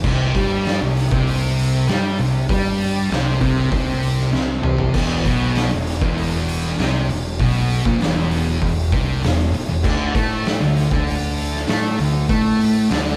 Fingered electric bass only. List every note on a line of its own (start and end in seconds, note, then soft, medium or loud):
0.04 0.33 C2 medium
0.35 0.78 G2 loud
0.81 1.09 C2 medium
1.11 1.84 C2 loud
1.88 2.17 G2 medium
2.19 2.48 C2 medium
2.49 3.07 G2 medium
3.11 3.39 C2 medium
3.41 3.70 C2 loud
3.72 4.29 C2 loud
4.33 4.61 C2 medium
4.63 4.92 C2 medium
4.94 5.23 E1 medium
5.25 5.68 B1 loud
5.71 6.00 E1 medium
6.01 6.74 E1 loud
6.78 7.06 C2 medium
7.09 7.37 E1 medium
7.39 7.82 B1 medium
7.85 7.99 A#1 loud
8.00 8.58 E1 medium
8.62 8.90 E1 medium
8.93 9.21 C2 loud
9.23 9.52 E1 medium
9.54 9.68 E1 medium
9.69 9.83 E1 medium
9.84 10.13 D2 loud
10.15 10.57 A2 loud
10.61 10.89 D2 medium
10.91 11.64 D2 loud
11.68 11.96 A2 medium
11.99 12.27 D2 medium
12.29 12.87 A2 loud
12.91 13.17 D2 medium